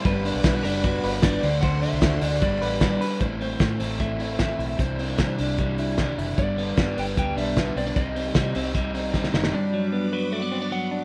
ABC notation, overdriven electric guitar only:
X:1
M:4/4
L:1/8
Q:1/4=152
K:G
V:1 name="Overdriven electric guitar"
[G,B,DFB]2 [B,DFB] [DFB] [B,DFB]2 [B,DFB] [A,DFc] | [D,F,A,DFc]2 [A,DFc] [A,DFc] [B,DFB]2 [B,DFB] [DFB] | [A,,E,A,CE] [A,CE] [A,,E,A,CE] [A,CE] [E,A,CE] [A,CE] [A,,E,A,CE]2 | [C,E,G,DE] [G,DE] [C,E,G,DE] [G,DE] [E,G,DE] [G,DE] [C,E,G,DE]2 |
[G,,D,G,B,D] [G,B,D] [G,,D,G,B,D] [G,B,D] [D,G,B,D] [G,B,D] [G,,D,G,B,D]2 | [C,G,C_E] [G,CE] [C,G,CE] [G,CE] [C,G,CE] [G,CE] [C,G,CE]2 | z8 |]